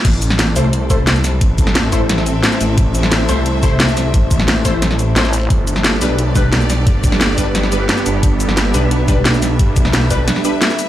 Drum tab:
CC |x---------------|----------------|----------------|----------------|
HH |x-x-x-o-x-x-x-o-|x-x-x-o-x-x-x-o-|x-x-x-o-x-x-x-o-|x-x-x-o-x-x-x-o-|
SH |--x---x---x--xx-|--x---x---x--xx-|--x---x---x--xx-|--x---x---x--xx-|
SD |---oo-------o-o-|---oo---oo--oo--|---oo-------o-o-|---oo---oo--oo--|
BD |o---------o-----|o-o---o---------|o---------o-----|o-o---o---------|

CC |----------------|----------------|----------------|----------------|
HH |x-x-x-o-x-x-x-o-|x-x-x-o-x-x-x-o-|x-x-x-o-x-x-x-o-|x-x-x-o-x-x-x-o-|
SH |--x---x---x--xx-|--x---x---x--xx-|--x---x---x--xx-|--x---x---x--xx-|
SD |---oo-------o-o-|---oo---oo--oo--|---oo-------o-o-|---oo---oo--oo--|
BD |o---------o-----|o-o---o---------|o---------o-----|o-o---o---------|